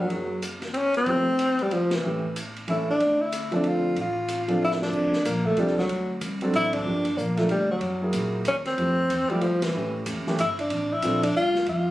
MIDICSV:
0, 0, Header, 1, 6, 480
1, 0, Start_track
1, 0, Key_signature, -1, "minor"
1, 0, Tempo, 321199
1, 160, Time_signature, 3, 2, 24, 8
1, 17795, End_track
2, 0, Start_track
2, 0, Title_t, "Grand piano"
2, 0, Program_c, 0, 0
2, 156, Note_on_c, 0, 54, 38
2, 166, Note_on_c, 0, 58, 37
2, 169, Note_on_c, 0, 64, 33
2, 182, Note_on_c, 0, 68, 38
2, 428, Note_off_c, 0, 54, 0
2, 433, Note_off_c, 0, 58, 0
2, 435, Note_off_c, 0, 64, 0
2, 441, Note_off_c, 0, 68, 0
2, 1600, Note_on_c, 0, 53, 38
2, 1612, Note_on_c, 0, 57, 37
2, 1617, Note_on_c, 0, 64, 37
2, 1630, Note_on_c, 0, 67, 43
2, 1872, Note_off_c, 0, 53, 0
2, 1878, Note_off_c, 0, 57, 0
2, 1880, Note_off_c, 0, 64, 0
2, 1887, Note_off_c, 0, 67, 0
2, 3039, Note_on_c, 0, 52, 41
2, 3053, Note_on_c, 0, 57, 37
2, 3066, Note_on_c, 0, 61, 35
2, 3074, Note_on_c, 0, 67, 45
2, 3313, Note_off_c, 0, 52, 0
2, 3320, Note_off_c, 0, 57, 0
2, 3327, Note_off_c, 0, 61, 0
2, 3331, Note_off_c, 0, 67, 0
2, 3998, Note_on_c, 0, 52, 54
2, 4015, Note_on_c, 0, 57, 46
2, 4023, Note_on_c, 0, 61, 49
2, 4039, Note_on_c, 0, 69, 61
2, 4274, Note_off_c, 0, 52, 0
2, 4282, Note_off_c, 0, 57, 0
2, 4286, Note_off_c, 0, 61, 0
2, 4294, Note_off_c, 0, 69, 0
2, 5251, Note_on_c, 0, 53, 62
2, 5261, Note_on_c, 0, 60, 55
2, 5270, Note_on_c, 0, 62, 52
2, 5277, Note_on_c, 0, 69, 69
2, 5886, Note_off_c, 0, 53, 0
2, 5890, Note_off_c, 0, 60, 0
2, 5895, Note_off_c, 0, 62, 0
2, 5899, Note_off_c, 0, 69, 0
2, 6695, Note_on_c, 0, 53, 55
2, 6710, Note_on_c, 0, 60, 48
2, 6716, Note_on_c, 0, 62, 48
2, 6726, Note_on_c, 0, 69, 60
2, 7328, Note_off_c, 0, 53, 0
2, 7336, Note_off_c, 0, 60, 0
2, 7339, Note_off_c, 0, 62, 0
2, 7343, Note_off_c, 0, 69, 0
2, 7361, Note_on_c, 0, 53, 40
2, 7376, Note_on_c, 0, 60, 41
2, 7385, Note_on_c, 0, 62, 39
2, 7394, Note_on_c, 0, 69, 46
2, 7637, Note_off_c, 0, 53, 0
2, 7644, Note_off_c, 0, 60, 0
2, 7648, Note_off_c, 0, 62, 0
2, 7653, Note_off_c, 0, 69, 0
2, 8332, Note_on_c, 0, 53, 58
2, 8341, Note_on_c, 0, 60, 57
2, 8350, Note_on_c, 0, 62, 55
2, 8365, Note_on_c, 0, 69, 63
2, 8602, Note_off_c, 0, 53, 0
2, 8606, Note_off_c, 0, 60, 0
2, 8611, Note_off_c, 0, 62, 0
2, 8619, Note_off_c, 0, 69, 0
2, 9593, Note_on_c, 0, 54, 62
2, 9597, Note_on_c, 0, 60, 57
2, 9612, Note_on_c, 0, 62, 57
2, 9622, Note_on_c, 0, 69, 72
2, 10216, Note_off_c, 0, 54, 0
2, 10218, Note_off_c, 0, 60, 0
2, 10226, Note_off_c, 0, 62, 0
2, 10231, Note_off_c, 0, 69, 0
2, 10244, Note_on_c, 0, 53, 42
2, 10259, Note_on_c, 0, 58, 37
2, 10270, Note_on_c, 0, 62, 46
2, 10278, Note_on_c, 0, 67, 48
2, 10517, Note_off_c, 0, 53, 0
2, 10525, Note_off_c, 0, 58, 0
2, 10530, Note_off_c, 0, 62, 0
2, 10534, Note_off_c, 0, 67, 0
2, 11037, Note_on_c, 0, 53, 57
2, 11046, Note_on_c, 0, 58, 51
2, 11057, Note_on_c, 0, 62, 53
2, 11066, Note_on_c, 0, 70, 59
2, 11196, Note_off_c, 0, 53, 0
2, 11200, Note_off_c, 0, 58, 0
2, 11206, Note_off_c, 0, 62, 0
2, 11210, Note_off_c, 0, 70, 0
2, 11982, Note_on_c, 0, 54, 60
2, 11989, Note_on_c, 0, 58, 54
2, 12000, Note_on_c, 0, 64, 55
2, 12006, Note_on_c, 0, 68, 66
2, 12609, Note_off_c, 0, 54, 0
2, 12613, Note_off_c, 0, 58, 0
2, 12619, Note_off_c, 0, 64, 0
2, 12622, Note_off_c, 0, 68, 0
2, 13114, Note_on_c, 0, 53, 44
2, 13117, Note_on_c, 0, 57, 37
2, 13126, Note_on_c, 0, 64, 41
2, 13143, Note_on_c, 0, 67, 44
2, 13391, Note_off_c, 0, 53, 0
2, 13393, Note_off_c, 0, 57, 0
2, 13397, Note_off_c, 0, 64, 0
2, 13405, Note_off_c, 0, 67, 0
2, 13907, Note_on_c, 0, 53, 62
2, 13914, Note_on_c, 0, 57, 55
2, 13922, Note_on_c, 0, 64, 53
2, 13935, Note_on_c, 0, 67, 70
2, 14069, Note_off_c, 0, 53, 0
2, 14073, Note_off_c, 0, 57, 0
2, 14077, Note_off_c, 0, 64, 0
2, 14083, Note_off_c, 0, 67, 0
2, 14562, Note_on_c, 0, 52, 43
2, 14580, Note_on_c, 0, 57, 35
2, 14582, Note_on_c, 0, 61, 42
2, 14596, Note_on_c, 0, 67, 45
2, 15283, Note_off_c, 0, 52, 0
2, 15292, Note_off_c, 0, 57, 0
2, 15293, Note_off_c, 0, 61, 0
2, 15300, Note_off_c, 0, 67, 0
2, 15349, Note_on_c, 0, 52, 69
2, 15359, Note_on_c, 0, 57, 55
2, 15366, Note_on_c, 0, 61, 57
2, 15383, Note_on_c, 0, 67, 66
2, 15509, Note_off_c, 0, 52, 0
2, 15514, Note_off_c, 0, 57, 0
2, 15518, Note_off_c, 0, 61, 0
2, 15526, Note_off_c, 0, 67, 0
2, 16483, Note_on_c, 0, 53, 48
2, 16490, Note_on_c, 0, 60, 53
2, 16498, Note_on_c, 0, 62, 47
2, 16509, Note_on_c, 0, 69, 57
2, 16753, Note_off_c, 0, 53, 0
2, 16757, Note_off_c, 0, 60, 0
2, 16760, Note_off_c, 0, 62, 0
2, 16766, Note_off_c, 0, 69, 0
2, 17795, End_track
3, 0, Start_track
3, 0, Title_t, "Tenor saxophone"
3, 0, Program_c, 1, 66
3, 16, Note_on_c, 1, 54, 62
3, 659, Note_off_c, 1, 54, 0
3, 1096, Note_on_c, 1, 60, 60
3, 1151, Note_on_c, 1, 61, 92
3, 1173, Note_off_c, 1, 60, 0
3, 1437, Note_off_c, 1, 61, 0
3, 1447, Note_on_c, 1, 60, 79
3, 2423, Note_on_c, 1, 55, 71
3, 2446, Note_off_c, 1, 60, 0
3, 2586, Note_on_c, 1, 53, 65
3, 2609, Note_off_c, 1, 55, 0
3, 2908, Note_on_c, 1, 52, 58
3, 2930, Note_off_c, 1, 53, 0
3, 3548, Note_off_c, 1, 52, 0
3, 4026, Note_on_c, 1, 64, 68
3, 4297, Note_off_c, 1, 64, 0
3, 4338, Note_on_c, 1, 62, 74
3, 4800, Note_on_c, 1, 64, 78
3, 4822, Note_off_c, 1, 62, 0
3, 5276, Note_off_c, 1, 64, 0
3, 5309, Note_on_c, 1, 62, 72
3, 5487, Note_on_c, 1, 65, 83
3, 5509, Note_off_c, 1, 62, 0
3, 5949, Note_off_c, 1, 65, 0
3, 5995, Note_on_c, 1, 65, 74
3, 6864, Note_off_c, 1, 65, 0
3, 6939, Note_on_c, 1, 64, 80
3, 7063, Note_off_c, 1, 64, 0
3, 7200, Note_on_c, 1, 62, 70
3, 7810, Note_off_c, 1, 62, 0
3, 7858, Note_on_c, 1, 58, 75
3, 8147, Note_on_c, 1, 57, 76
3, 8169, Note_off_c, 1, 58, 0
3, 8357, Note_on_c, 1, 55, 83
3, 8379, Note_off_c, 1, 57, 0
3, 8631, Note_off_c, 1, 55, 0
3, 8640, Note_on_c, 1, 54, 67
3, 9250, Note_off_c, 1, 54, 0
3, 9795, Note_on_c, 1, 64, 100
3, 10065, Note_on_c, 1, 62, 85
3, 10087, Note_off_c, 1, 64, 0
3, 10721, Note_on_c, 1, 58, 76
3, 10744, Note_off_c, 1, 62, 0
3, 11017, Note_on_c, 1, 57, 72
3, 11040, Note_off_c, 1, 58, 0
3, 11204, Note_off_c, 1, 57, 0
3, 11218, Note_on_c, 1, 55, 83
3, 11493, Note_off_c, 1, 55, 0
3, 11520, Note_on_c, 1, 54, 70
3, 12129, Note_off_c, 1, 54, 0
3, 12667, Note_on_c, 1, 61, 88
3, 12797, Note_off_c, 1, 61, 0
3, 12949, Note_on_c, 1, 60, 81
3, 13890, Note_on_c, 1, 55, 71
3, 13913, Note_off_c, 1, 60, 0
3, 14073, Note_on_c, 1, 53, 72
3, 14095, Note_off_c, 1, 55, 0
3, 14382, Note_on_c, 1, 52, 68
3, 14405, Note_off_c, 1, 53, 0
3, 15044, Note_off_c, 1, 52, 0
3, 15541, Note_on_c, 1, 64, 80
3, 15812, Note_off_c, 1, 64, 0
3, 15838, Note_on_c, 1, 62, 74
3, 16327, Note_on_c, 1, 64, 90
3, 16349, Note_off_c, 1, 62, 0
3, 16787, Note_on_c, 1, 62, 81
3, 16809, Note_off_c, 1, 64, 0
3, 16965, Note_off_c, 1, 62, 0
3, 16983, Note_on_c, 1, 65, 97
3, 17419, Note_off_c, 1, 65, 0
3, 17469, Note_on_c, 1, 65, 72
3, 17795, Note_off_c, 1, 65, 0
3, 17795, End_track
4, 0, Start_track
4, 0, Title_t, "Upright bass"
4, 0, Program_c, 2, 32
4, 147, Note_on_c, 2, 30, 63
4, 1537, Note_off_c, 2, 30, 0
4, 1592, Note_on_c, 2, 29, 68
4, 2981, Note_off_c, 2, 29, 0
4, 3053, Note_on_c, 2, 33, 61
4, 4433, Note_off_c, 2, 33, 0
4, 4480, Note_on_c, 2, 38, 63
4, 5867, Note_off_c, 2, 38, 0
4, 5920, Note_on_c, 2, 33, 75
4, 7307, Note_off_c, 2, 33, 0
4, 7371, Note_on_c, 2, 38, 68
4, 7834, Note_off_c, 2, 38, 0
4, 7843, Note_on_c, 2, 34, 86
4, 8313, Note_off_c, 2, 34, 0
4, 8320, Note_on_c, 2, 36, 85
4, 8792, Note_off_c, 2, 36, 0
4, 8804, Note_on_c, 2, 38, 76
4, 9273, Note_off_c, 2, 38, 0
4, 9287, Note_on_c, 2, 36, 84
4, 9755, Note_off_c, 2, 36, 0
4, 9764, Note_on_c, 2, 33, 84
4, 10233, Note_off_c, 2, 33, 0
4, 10257, Note_on_c, 2, 31, 72
4, 10710, Note_off_c, 2, 31, 0
4, 10719, Note_on_c, 2, 34, 92
4, 11183, Note_off_c, 2, 34, 0
4, 11192, Note_on_c, 2, 38, 93
4, 11666, Note_off_c, 2, 38, 0
4, 11675, Note_on_c, 2, 42, 76
4, 12148, Note_off_c, 2, 42, 0
4, 12154, Note_on_c, 2, 46, 87
4, 12619, Note_off_c, 2, 46, 0
4, 12628, Note_on_c, 2, 39, 84
4, 13103, Note_off_c, 2, 39, 0
4, 13116, Note_on_c, 2, 41, 75
4, 13584, Note_off_c, 2, 41, 0
4, 13593, Note_on_c, 2, 40, 80
4, 13878, Note_off_c, 2, 40, 0
4, 14075, Note_on_c, 2, 36, 88
4, 14546, Note_off_c, 2, 36, 0
4, 14559, Note_on_c, 2, 33, 71
4, 15022, Note_off_c, 2, 33, 0
4, 15031, Note_on_c, 2, 29, 82
4, 15316, Note_off_c, 2, 29, 0
4, 15518, Note_on_c, 2, 31, 82
4, 15982, Note_off_c, 2, 31, 0
4, 15991, Note_on_c, 2, 33, 66
4, 16462, Note_off_c, 2, 33, 0
4, 16470, Note_on_c, 2, 34, 83
4, 16942, Note_off_c, 2, 34, 0
4, 17432, Note_on_c, 2, 41, 73
4, 17795, Note_off_c, 2, 41, 0
4, 17795, End_track
5, 0, Start_track
5, 0, Title_t, "Muted upright bass strokes"
5, 13904, Note_on_c, 9, 29, 31
5, 14054, Note_off_c, 9, 29, 0
5, 15351, Note_on_c, 9, 29, 33
5, 15500, Note_off_c, 9, 29, 0
5, 17795, End_track
6, 0, Start_track
6, 0, Title_t, "Drums"
6, 145, Note_on_c, 9, 36, 24
6, 150, Note_on_c, 9, 51, 40
6, 294, Note_off_c, 9, 36, 0
6, 299, Note_off_c, 9, 51, 0
6, 632, Note_on_c, 9, 44, 55
6, 632, Note_on_c, 9, 51, 53
6, 782, Note_off_c, 9, 44, 0
6, 782, Note_off_c, 9, 51, 0
6, 922, Note_on_c, 9, 38, 38
6, 924, Note_on_c, 9, 51, 31
6, 1072, Note_off_c, 9, 38, 0
6, 1073, Note_off_c, 9, 51, 0
6, 1108, Note_on_c, 9, 51, 42
6, 1257, Note_off_c, 9, 51, 0
6, 1408, Note_on_c, 9, 51, 38
6, 1557, Note_off_c, 9, 51, 0
6, 1586, Note_on_c, 9, 51, 39
6, 1588, Note_on_c, 9, 36, 23
6, 1736, Note_off_c, 9, 51, 0
6, 1738, Note_off_c, 9, 36, 0
6, 2074, Note_on_c, 9, 44, 43
6, 2074, Note_on_c, 9, 51, 60
6, 2224, Note_off_c, 9, 44, 0
6, 2224, Note_off_c, 9, 51, 0
6, 2374, Note_on_c, 9, 51, 34
6, 2523, Note_off_c, 9, 51, 0
6, 2558, Note_on_c, 9, 51, 45
6, 2707, Note_off_c, 9, 51, 0
6, 2854, Note_on_c, 9, 38, 65
6, 2856, Note_on_c, 9, 51, 54
6, 3004, Note_off_c, 9, 38, 0
6, 3005, Note_off_c, 9, 51, 0
6, 3528, Note_on_c, 9, 44, 46
6, 3528, Note_on_c, 9, 51, 57
6, 3677, Note_off_c, 9, 44, 0
6, 3677, Note_off_c, 9, 51, 0
6, 3833, Note_on_c, 9, 51, 32
6, 3983, Note_off_c, 9, 51, 0
6, 4002, Note_on_c, 9, 51, 41
6, 4151, Note_off_c, 9, 51, 0
6, 4482, Note_on_c, 9, 36, 26
6, 4488, Note_on_c, 9, 51, 41
6, 4631, Note_off_c, 9, 36, 0
6, 4637, Note_off_c, 9, 51, 0
6, 4968, Note_on_c, 9, 44, 49
6, 4968, Note_on_c, 9, 51, 64
6, 5118, Note_off_c, 9, 44, 0
6, 5118, Note_off_c, 9, 51, 0
6, 5258, Note_on_c, 9, 51, 31
6, 5407, Note_off_c, 9, 51, 0
6, 5435, Note_on_c, 9, 51, 38
6, 5584, Note_off_c, 9, 51, 0
6, 5921, Note_on_c, 9, 36, 27
6, 5924, Note_on_c, 9, 51, 45
6, 6071, Note_off_c, 9, 36, 0
6, 6073, Note_off_c, 9, 51, 0
6, 6403, Note_on_c, 9, 44, 45
6, 6403, Note_on_c, 9, 51, 59
6, 6552, Note_off_c, 9, 44, 0
6, 6552, Note_off_c, 9, 51, 0
6, 6701, Note_on_c, 9, 51, 34
6, 6851, Note_off_c, 9, 51, 0
6, 7042, Note_on_c, 9, 38, 44
6, 7192, Note_off_c, 9, 38, 0
6, 7205, Note_on_c, 9, 38, 65
6, 7354, Note_off_c, 9, 38, 0
6, 7367, Note_on_c, 9, 36, 60
6, 7372, Note_on_c, 9, 49, 55
6, 7517, Note_off_c, 9, 36, 0
6, 7521, Note_off_c, 9, 49, 0
6, 7665, Note_on_c, 9, 38, 51
6, 7815, Note_off_c, 9, 38, 0
6, 7845, Note_on_c, 9, 36, 20
6, 7850, Note_on_c, 9, 44, 59
6, 7850, Note_on_c, 9, 51, 66
6, 7995, Note_off_c, 9, 36, 0
6, 8000, Note_off_c, 9, 44, 0
6, 8000, Note_off_c, 9, 51, 0
6, 8145, Note_on_c, 9, 36, 50
6, 8294, Note_off_c, 9, 36, 0
6, 8319, Note_on_c, 9, 51, 45
6, 8324, Note_on_c, 9, 36, 17
6, 8468, Note_off_c, 9, 51, 0
6, 8473, Note_off_c, 9, 36, 0
6, 8476, Note_on_c, 9, 38, 25
6, 8626, Note_off_c, 9, 38, 0
6, 8646, Note_on_c, 9, 38, 39
6, 8795, Note_off_c, 9, 38, 0
6, 8804, Note_on_c, 9, 36, 19
6, 8806, Note_on_c, 9, 51, 51
6, 8954, Note_off_c, 9, 36, 0
6, 8955, Note_off_c, 9, 51, 0
6, 9284, Note_on_c, 9, 36, 26
6, 9284, Note_on_c, 9, 44, 54
6, 9284, Note_on_c, 9, 51, 66
6, 9433, Note_off_c, 9, 44, 0
6, 9433, Note_off_c, 9, 51, 0
6, 9434, Note_off_c, 9, 36, 0
6, 9578, Note_on_c, 9, 51, 35
6, 9727, Note_off_c, 9, 51, 0
6, 9765, Note_on_c, 9, 36, 17
6, 9766, Note_on_c, 9, 51, 43
6, 9914, Note_off_c, 9, 36, 0
6, 9915, Note_off_c, 9, 51, 0
6, 10056, Note_on_c, 9, 51, 58
6, 10063, Note_on_c, 9, 36, 67
6, 10206, Note_off_c, 9, 51, 0
6, 10212, Note_off_c, 9, 36, 0
6, 10533, Note_on_c, 9, 51, 52
6, 10683, Note_off_c, 9, 51, 0
6, 10719, Note_on_c, 9, 36, 19
6, 10725, Note_on_c, 9, 44, 49
6, 10869, Note_off_c, 9, 36, 0
6, 10874, Note_off_c, 9, 44, 0
6, 11017, Note_on_c, 9, 38, 34
6, 11019, Note_on_c, 9, 51, 38
6, 11167, Note_off_c, 9, 38, 0
6, 11168, Note_off_c, 9, 51, 0
6, 11193, Note_on_c, 9, 51, 47
6, 11196, Note_on_c, 9, 36, 21
6, 11342, Note_off_c, 9, 51, 0
6, 11345, Note_off_c, 9, 36, 0
6, 11669, Note_on_c, 9, 51, 49
6, 11673, Note_on_c, 9, 36, 17
6, 11818, Note_off_c, 9, 51, 0
6, 11822, Note_off_c, 9, 36, 0
6, 12145, Note_on_c, 9, 44, 53
6, 12145, Note_on_c, 9, 51, 63
6, 12149, Note_on_c, 9, 36, 20
6, 12294, Note_off_c, 9, 44, 0
6, 12294, Note_off_c, 9, 51, 0
6, 12299, Note_off_c, 9, 36, 0
6, 12626, Note_on_c, 9, 44, 47
6, 12626, Note_on_c, 9, 51, 55
6, 12630, Note_on_c, 9, 36, 16
6, 12776, Note_off_c, 9, 44, 0
6, 12776, Note_off_c, 9, 51, 0
6, 12779, Note_off_c, 9, 36, 0
6, 12933, Note_on_c, 9, 38, 33
6, 12934, Note_on_c, 9, 51, 43
6, 13082, Note_off_c, 9, 38, 0
6, 13084, Note_off_c, 9, 51, 0
6, 13113, Note_on_c, 9, 36, 16
6, 13118, Note_on_c, 9, 51, 49
6, 13263, Note_off_c, 9, 36, 0
6, 13267, Note_off_c, 9, 51, 0
6, 13592, Note_on_c, 9, 36, 23
6, 13598, Note_on_c, 9, 44, 47
6, 13598, Note_on_c, 9, 51, 64
6, 13742, Note_off_c, 9, 36, 0
6, 13747, Note_off_c, 9, 44, 0
6, 13747, Note_off_c, 9, 51, 0
6, 13892, Note_on_c, 9, 51, 33
6, 14041, Note_off_c, 9, 51, 0
6, 14067, Note_on_c, 9, 51, 49
6, 14072, Note_on_c, 9, 36, 20
6, 14217, Note_off_c, 9, 51, 0
6, 14221, Note_off_c, 9, 36, 0
6, 14375, Note_on_c, 9, 38, 72
6, 14377, Note_on_c, 9, 51, 62
6, 14525, Note_off_c, 9, 38, 0
6, 14526, Note_off_c, 9, 51, 0
6, 15033, Note_on_c, 9, 44, 66
6, 15033, Note_on_c, 9, 51, 62
6, 15036, Note_on_c, 9, 36, 23
6, 15182, Note_off_c, 9, 44, 0
6, 15182, Note_off_c, 9, 51, 0
6, 15185, Note_off_c, 9, 36, 0
6, 15343, Note_on_c, 9, 38, 38
6, 15493, Note_off_c, 9, 38, 0
6, 15514, Note_on_c, 9, 36, 15
6, 15520, Note_on_c, 9, 44, 42
6, 15520, Note_on_c, 9, 51, 57
6, 15664, Note_off_c, 9, 36, 0
6, 15670, Note_off_c, 9, 44, 0
6, 15670, Note_off_c, 9, 51, 0
6, 15823, Note_on_c, 9, 51, 43
6, 15972, Note_off_c, 9, 51, 0
6, 15993, Note_on_c, 9, 51, 54
6, 15994, Note_on_c, 9, 36, 17
6, 16142, Note_off_c, 9, 51, 0
6, 16143, Note_off_c, 9, 36, 0
6, 16473, Note_on_c, 9, 44, 46
6, 16473, Note_on_c, 9, 51, 60
6, 16474, Note_on_c, 9, 36, 21
6, 16622, Note_off_c, 9, 44, 0
6, 16622, Note_off_c, 9, 51, 0
6, 16623, Note_off_c, 9, 36, 0
6, 16787, Note_on_c, 9, 51, 61
6, 16936, Note_off_c, 9, 51, 0
6, 16957, Note_on_c, 9, 36, 19
6, 17106, Note_off_c, 9, 36, 0
6, 17259, Note_on_c, 9, 38, 41
6, 17409, Note_off_c, 9, 38, 0
6, 17431, Note_on_c, 9, 36, 16
6, 17431, Note_on_c, 9, 51, 44
6, 17581, Note_off_c, 9, 36, 0
6, 17581, Note_off_c, 9, 51, 0
6, 17795, End_track
0, 0, End_of_file